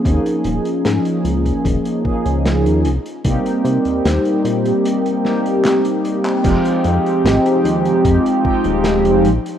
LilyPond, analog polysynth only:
\new Staff \with { instrumentName = "Analog polysynth" } { \time 4/4 \key f \minor \tempo 4 = 75 <f bes des' ees' aes'>2~ <f bes des' ees' aes'>8 <f bes des' ees' aes'>4 r8 | <g bes c' ees' g'>2~ <g bes c' ees' g'>8 <g bes c' ees' g'>4. | <f aes c' ees' g'>2~ <f aes c' ees' g'>8 <f aes c' ees' g'>4 r8 | }